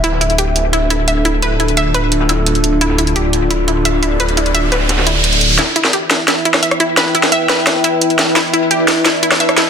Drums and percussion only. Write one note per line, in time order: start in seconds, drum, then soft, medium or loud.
0.04 closed hi-hat medium
0.04 ride medium
0.12 snare soft
0.21 closed hi-hat medium
0.21 ride medium
0.30 closed hi-hat soft
0.38 closed hi-hat medium
0.38 ride medium
0.56 closed hi-hat medium
0.56 open hi-hat medium
0.64 ride soft
0.73 closed hi-hat medium
0.73 ride medium
0.90 closed hi-hat medium
0.90 ride medium
1.08 closed hi-hat medium
1.08 ride medium
1.25 closed hi-hat medium
1.25 ride medium
1.42 closed hi-hat medium
1.42 ride medium
1.60 closed hi-hat medium
1.60 ride medium
1.68 closed hi-hat soft
1.77 closed hi-hat medium
1.77 ride medium
1.94 closed hi-hat medium
1.94 ride medium
2.12 closed hi-hat medium
2.12 ride medium
2.20 snare medium
2.29 snare soft
2.29 closed hi-hat medium
2.29 ride medium
2.46 closed hi-hat medium
2.46 ride medium
2.55 closed hi-hat soft
2.64 closed hi-hat medium
2.64 ride medium
2.73 ride soft
2.81 closed hi-hat medium
2.81 ride medium
2.90 snare soft
2.98 closed hi-hat medium
2.98 ride medium
3.07 closed hi-hat soft
3.16 closed hi-hat medium
3.16 ride medium
3.33 closed hi-hat medium
3.33 open hi-hat medium
3.42 ride soft
3.50 closed hi-hat medium
3.50 ride medium
3.68 closed hi-hat medium
3.68 ride medium
3.85 closed hi-hat medium
3.85 ride medium
4.03 closed hi-hat medium
4.03 ride medium
4.20 closed hi-hat medium
4.20 ride medium
4.29 closed hi-hat soft
4.37 closed hi-hat medium
4.37 ride medium
4.46 closed hi-hat soft
4.55 closed hi-hat medium
4.55 ride medium
4.72 snare loud
4.72 closed hi-hat medium
4.72 ride medium
4.89 snare loud
4.89 closed hi-hat medium
4.89 ride medium
4.98 snare loud
4.98 ride medium
5.07 closed hi-hat medium
5.15 ride medium
5.24 closed hi-hat medium
5.24 ride medium
5.33 closed hi-hat soft
5.41 closed hi-hat medium
5.41 ride medium
5.50 ride soft
5.59 snare soft
5.59 closed hi-hat medium
5.76 closed hi-hat medium
5.84 snare soft
5.93 closed hi-hat loud
6.11 snare medium
6.11 closed hi-hat medium
6.28 snare soft
6.28 closed hi-hat medium
6.45 closed hi-hat medium
6.54 cross-stick medium
6.54 snare soft
6.63 closed hi-hat medium
6.71 cross-stick medium
6.71 closed hi-hat soft
6.80 closed hi-hat medium
6.97 snare medium
6.97 closed hi-hat medium
7.15 closed hi-hat medium
7.23 snare soft
7.23 closed hi-hat soft
7.32 closed hi-hat medium
7.49 snare medium
7.49 closed hi-hat medium
7.67 cross-stick medium
7.67 snare medium
7.67 closed hi-hat medium
7.84 closed hi-hat medium
8.02 closed hi-hat medium
8.10 closed hi-hat soft
8.19 snare medium
8.19 closed hi-hat medium
8.36 snare medium
8.36 closed hi-hat medium
8.54 closed hi-hat medium
8.71 closed hi-hat medium
8.88 snare medium
8.88 closed hi-hat medium
9.05 snare medium
9.05 closed hi-hat medium
9.23 closed hi-hat medium
9.32 cross-stick medium
9.32 snare medium
9.40 closed hi-hat medium
9.49 cross-stick medium
9.49 closed hi-hat soft
9.57 snare medium
9.57 closed hi-hat medium